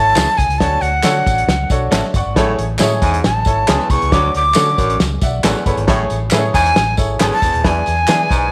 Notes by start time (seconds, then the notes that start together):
Already playing: G#1 E4 A4 C#5 A5
0.16 C#2 E3 A3 C#4 G#4, snare, clap, closed hi-hat, tambourine
0.38 C2 G#5, kick, closed hi-hat, tambourine
0.49 C#2, closed hi-hat
0.58 D2 D4 F#4 A4 C#5 A5, kick, snare, closed hi-hat
0.81 D2 F#5, closed hi-hat, tambourine
1.03 D3 A3 C#4 D4 F4 F#4 A4 C#5, snare, clap, closed hi-hat, tambourine
1.10 F#4
1.27 A1, kick, closed hi-hat, tambourine
1.38 closed hi-hat
1.47 C#2, snare, closed hi-hat, tambourine
1.70 B1 D4 F#4 A4 C#5, kick, closed hi-hat, tambourine
1.91 A1 A3 C#4 F#4 A4 C#5 E5, snare, clap, closed hi-hat, tambourine
2.04 snare
2.14 G1 D5 F#5 C#6, kick, closed hi-hat, tambourine
2.26 G#1
2.36 A1 A2 E4 G#4 A4 C#5, kick, snare, closed hi-hat, tambourine
2.59 A1, closed hi-hat
2.79 A2 G#3 C#4 E4 G#4 A4 C#5, snare, clap, closed hi-hat, tambourine
3.02 E2 G#2 G#5, kick, closed hi-hat, tambourine
3.14 closed hi-hat
3.24 A1 A5, snare, closed hi-hat, tambourine
3.45 G#1 E4 A4 C#5, kick, closed hi-hat, tambourine
3.68 C#2 E2 G#3 C#4 E4 G#4, snare, clap, closed hi-hat, tambourine
3.79 snare
3.90 C2 E2 C#6, kick, closed hi-hat, tambourine
4.02 C#2, closed hi-hat
4.12 D2 D4 F#4 A4 C#5 D6, kick, snare, closed hi-hat, tambourine
4.34 D2 D6, closed hi-hat
4.54 D3 A3 C#4 D4 F#4 A4, snare, clap, closed hi-hat, tambourine
4.78 A1 F#2, kick, closed hi-hat, tambourine
4.90 closed hi-hat
5.00 C#2, snare, closed hi-hat, tambourine
5.21 B1 D5 E5 F#5, kick, closed hi-hat, tambourine
5.44 A1 E2 A3 C#4 F#4 A4 B4 D5 F#5, snare, clap, closed hi-hat, tambourine
5.56 snare
5.66 G1 E2 A4 C#5 B5, kick, closed hi-hat, tambourine
5.77 G#1, closed hi-hat
5.87 A1 A2 E4 G#4 A4 C#5, kick, snare, closed hi-hat, tambourine
6.10 A1, closed hi-hat, tambourine
6.31 A2 E3 A3 C#4 E4 G#4 A4 B4, snare, clap, closed hi-hat, tambourine
6.39 C#5
6.54 E2 G#2 G#5, kick, closed hi-hat, tambourine
6.66 closed hi-hat
6.76 A1, snare, closed hi-hat, tambourine
6.97 G#1 E4 G#4 A4 C#5, kick, closed hi-hat, tambourine
7.20 G#1 E2 E3 A3 C#4 G#4 A5, snare, clap, closed hi-hat, tambourine
7.32 A5, snare
7.42 E1 E2, kick, closed hi-hat, tambourine
7.54 D#1, closed hi-hat
7.63 E2 E4 G#4 B4 D5 G#5, kick, snare, closed hi-hat
7.86 E2, closed hi-hat, tambourine
8.08 E3 B3 D4 E4 G#4 B4 D5, snare, clap, closed hi-hat, tambourine
8.30 B1 G#2, kick, closed hi-hat, tambourine